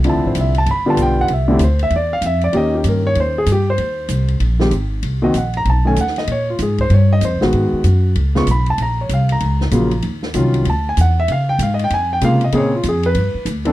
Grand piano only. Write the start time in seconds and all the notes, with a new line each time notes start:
0.05 D3 F3 C4 E4
0.09 A5
0.27 C5
0.40 E5
0.58 A5
0.71 B5
0.86 D3 G3 B3 F4 A5
1.02 G5
1.21 F#5
1.33 E5
1.48 D3 A3 C4 E4 G4
1.64 C5
1.83 E5
1.96 D5
2.13 F5
2.26 E5
2.44 D5
2.53 D#3 A#3 C#4 G4
2.57 D#5
2.75 G4
2.88 A#4
3.07 C#5
3.20 C5
3.38 G#4
3.52 G4
3.70 C5
4.59 D#3 G#3 C4 G4
5.22 D#3 A#3 C4 F#4 D#5
5.38 F#5
5.57 A#5
5.70 A5
5.85 D#3 A3 C#4 A4 G#5
6.01 F#5
6.18 D#5
6.32 C#5
6.50 F4
6.63 G#4
6.81 C5
6.94 C#5
7.13 D#5
7.25 C5
7.41 D#3 G#3 B3 F#4
8.35 C#3 G#3 B3 F4 C#6
8.51 B5
8.70 A5
8.82 A#5
9.01 C#5
9.14 F5
9.32 A#5
9.72 C#3 F#3 A#3 F4
10.34 D#3 F#3 C#4 F4
10.70 A5
10.89 G#5
11.01 F#5
11.20 E5
11.32 F5
11.49 G5
11.63 F5
11.74 D#5
11.84 G5
11.94 G#5
12.13 G5
12.21 C#3 G#3 A#3 F4 F5
12.44 D#5
12.53 C#3 A#3 C4 G#4
12.57 C#5
12.75 F4
12.89 G#4
13.06 B4
13.65 E3 C4 D4 A4